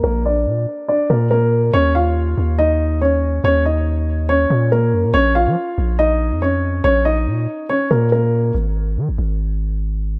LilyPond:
<<
  \new Staff \with { instrumentName = "Grand piano" } { \time 4/4 \key bes \phrygian \tempo 4 = 141 <bes bes'>8 <d' d''>4. <d' d''>8 <bes bes'>8 <bes bes'>4 | <des' des''>8 <f' f''>4. <ees' ees''>4 <des' des''>4 | <des' des''>8 <ees' ees''>4. <des' des''>4 <bes bes'>4 | <des' des''>8 <f' f''>4. <ees' ees''>4 <des' des''>4 |
<des' des''>8 <ees' ees''>4. <des' des''>8 <bes bes'>8 <bes bes'>4 | r1 | }
  \new Staff \with { instrumentName = "808-style bass" } { \clef bass \time 4/4 \key bes \phrygian bes,,4 bes,8 r4 bes,4. | ees,4. ees,2~ ees,8 | ees,2~ ees,8 bes,4 ges,16 bes,16 | bes,,8. f16 r8 bes,,4~ bes,,16 f,4~ f,16 |
bes,,4 bes,8 r4 bes,4. | aes,,4 ees16 aes,,16 aes,,2~ aes,,8 | }
>>